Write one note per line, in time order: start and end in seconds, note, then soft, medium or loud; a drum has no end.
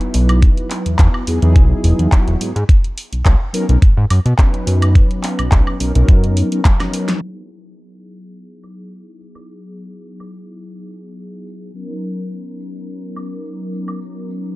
0.00 1.24 F#3 medium
0.00 1.24 B3 medium
0.00 1.24 D#4 medium
0.00 1.25 E4 medium
0.00 1.25 B4 medium
0.00 closed hi-hat soft
0.14 0.48 B1 medium
0.14 open hi-hat medium
0.29 closed hi-hat soft
0.29 high woodblock medium
0.42 kick loud
0.42 closed hi-hat medium
0.57 closed hi-hat soft
0.70 clap medium
0.70 open hi-hat medium
0.86 0.96 E2 soft
0.86 closed hi-hat soft
0.99 1.08 E2 loud
0.99 kick loud
0.99 clap loud
0.99 closed hi-hat medium
1.14 high woodblock medium
1.27 1.39 E2 soft
1.27 1.39 F#3 medium
1.27 1.39 B3 medium
1.27 1.39 D#4 medium
1.27 1.39 E4 medium
1.27 1.39 G#4 loud
1.27 open hi-hat medium
1.42 1.57 E2 medium
1.42 2.09 F#3 loud
1.42 2.09 B3 medium
1.42 2.09 D#4 medium
1.42 2.09 E4 medium
1.42 2.10 G#4 loud
1.42 closed hi-hat medium
1.56 1.74 B1 loud
1.56 kick loud
1.56 closed hi-hat medium
1.84 1.93 E1 medium
1.84 open hi-hat medium
1.99 2.07 E2 medium
1.99 closed hi-hat soft
2.12 kick medium
2.12 clap loud
2.12 closed hi-hat medium
2.27 2.36 E1 medium
2.27 closed hi-hat soft
2.40 2.53 G#2 soft
2.40 2.50 F#3 medium
2.40 2.50 B3 medium
2.40 2.50 D#4 medium
2.40 2.50 E4 medium
2.40 2.50 G#4 medium
2.40 open hi-hat medium
2.56 2.64 G#2 loud
2.56 closed hi-hat soft
2.69 kick loud
2.69 closed hi-hat medium
2.84 closed hi-hat soft
2.98 open hi-hat loud
3.12 3.23 B1 soft
3.12 closed hi-hat medium
3.25 3.35 B1 loud
3.25 kick loud
3.25 clap loud
3.25 closed hi-hat medium
3.53 3.65 F#3 medium
3.53 3.65 B3 medium
3.53 3.65 C#4 medium
3.53 3.65 D#4 medium
3.53 3.65 A#4 loud
3.53 open hi-hat medium
3.68 3.77 B1 medium
3.68 3.77 F#3 medium
3.68 3.77 B3 medium
3.68 3.77 C#4 medium
3.68 3.77 D#4 medium
3.68 3.77 A#4 medium
3.68 closed hi-hat medium
3.82 3.94 G#2 soft
3.82 kick loud
3.82 closed hi-hat medium
3.97 4.05 G#2 loud
4.10 4.20 F#2 medium
4.10 open hi-hat loud
4.10 high woodblock medium
4.26 4.34 B2 loud
4.26 closed hi-hat soft
4.37 5.76 F#3 medium
4.37 5.77 B3 medium
4.37 5.77 C#4 medium
4.37 5.77 D#4 medium
4.37 5.77 B4 medium
4.37 kick loud
4.37 clap loud
4.37 closed hi-hat medium
4.54 closed hi-hat soft
4.67 5.01 F#2 medium
4.67 open hi-hat medium
4.82 closed hi-hat medium
4.82 high woodblock medium
4.95 kick loud
4.95 closed hi-hat medium
5.11 closed hi-hat soft
5.23 clap medium
5.23 open hi-hat loud
5.39 5.49 B1 soft
5.39 closed hi-hat soft
5.39 high woodblock medium
5.52 5.61 B1 loud
5.52 kick loud
5.52 clap loud
5.52 closed hi-hat medium
5.67 high woodblock medium
5.79 5.92 B1 soft
5.79 5.91 F#3 medium
5.79 5.91 B3 medium
5.79 5.91 C#4 medium
5.79 5.92 D#4 medium
5.79 5.92 A#4 medium
5.79 open hi-hat medium
5.95 6.03 B1 medium
5.95 6.49 F#3 medium
5.95 6.49 B3 medium
5.95 6.49 C#4 medium
5.95 6.49 D#4 medium
5.95 6.49 A#4 loud
5.95 closed hi-hat medium
6.08 6.43 F#2 medium
6.08 kick loud
6.08 closed hi-hat medium
6.24 closed hi-hat soft
6.37 open hi-hat loud
6.51 6.60 F#3 medium
6.51 6.60 B3 medium
6.51 6.60 C#4 medium
6.51 6.60 D#4 medium
6.51 6.61 A#4 medium
6.51 closed hi-hat medium
6.65 kick loud
6.65 clap loud
6.65 closed hi-hat medium
6.65 high tom medium
6.80 7.19 F#3 medium
6.80 7.20 B3 medium
6.80 7.20 C#4 medium
6.80 7.20 D#4 medium
6.80 7.20 A#4 medium
6.80 snare medium
6.80 closed hi-hat soft
6.80 high woodblock medium
6.93 open hi-hat medium
7.08 snare medium
7.08 closed hi-hat medium
7.21 11.71 F#3 medium
7.21 11.71 B3 medium
8.64 tambourine medium
8.64 high woodblock soft
8.79 tambourine soft
8.93 tambourine soft
9.08 tambourine soft
9.21 tambourine medium
9.35 tambourine soft
9.35 high woodblock medium
9.49 tambourine soft
9.64 tambourine soft
9.77 tambourine medium
9.93 tambourine soft
10.20 tambourine soft
10.20 high woodblock medium
10.34 tambourine medium
10.49 tambourine soft
10.62 tambourine soft
10.77 tambourine soft
10.91 tambourine medium
11.06 tambourine soft
11.19 tambourine soft
11.34 tambourine soft
11.47 tambourine medium
11.62 tambourine soft
11.73 14.56 F#3 medium
11.73 14.56 B3 medium
11.73 14.56 C#4 medium
11.73 14.56 D#4 medium
11.73 14.56 A#4 medium
11.73 tambourine soft
11.91 tambourine soft
12.04 tambourine medium
12.19 tambourine soft
12.32 tambourine soft
12.47 tambourine soft
12.60 tambourine medium
12.76 tambourine soft
12.89 tambourine soft
13.04 tambourine soft
13.16 tambourine medium
13.16 high woodblock medium
13.32 tambourine soft
13.45 tambourine soft
13.60 tambourine soft
13.74 tambourine medium
13.88 tambourine soft
13.88 high woodblock medium
14.02 tambourine soft
14.17 tambourine soft
14.30 tambourine medium
14.45 tambourine soft